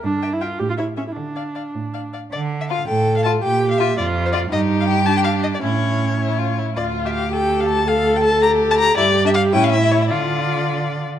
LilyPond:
<<
  \new Staff \with { instrumentName = "Violin" } { \time 6/8 \key d \minor \tempo 4. = 107 r8 e''8 e''8 r8 cis''8 cis''8 | r8 d''8 d''8 r8 d''8 d''8 | d''8. e''16 f''8 g''8. f''16 a''8 | g''8. f''16 e''8 d''8. c''16 d''8 |
ees''8. f''16 g''8 a''16 g''16 f''8 ees''16 d''16 | cis''2~ cis''8 r8 | d''8. e''16 f''8 g''8. f''16 a''8 | f''8. g''16 a''8 bes''8. a''16 bes''8 |
d''8. e''16 f''8 g''16 f''16 e''8 cis''16 e''16 | d''2~ d''8 r8 | }
  \new Staff \with { instrumentName = "Viola" } { \time 6/8 \key d \minor d'8. e'16 f'8 g'16 f'16 e'8 cis'16 e'16 | d'2~ d'8 r8 | r4. a'4. | g'4. f'4. |
ees'4. d'4. | cis'2~ cis'16 r8. | f'4. g'4. | a'2. |
g'4. e'4. | f'2~ f'16 r8. | }
  \new Staff \with { instrumentName = "Violin" } { \time 6/8 \key d \minor r8 g''8 g''8 r8 e''8 e''8 | r8 f''8 f''8 r8 f''8 f''8 | r4 f'16 r4 r16 f'16 r16 | r4 f'16 r4 r16 f'16 r16 |
g'2. | e'4. e'8 f'8 e'8 | f'8. g'8. a'4. | a'4. g'4. |
e'8. d'8. cis'8. e'8. | f'2~ f'8 r8 | }
  \new Staff \with { instrumentName = "Cello" } { \clef bass \time 6/8 \key d \minor g,4. a,4. | d4. a,4. | d4. a,4. | bes,4. f,4. |
g,2. | a,2~ a,8 r8 | d,2.~ | d,2. |
g,4. a,4. | d2~ d8 r8 | }
>>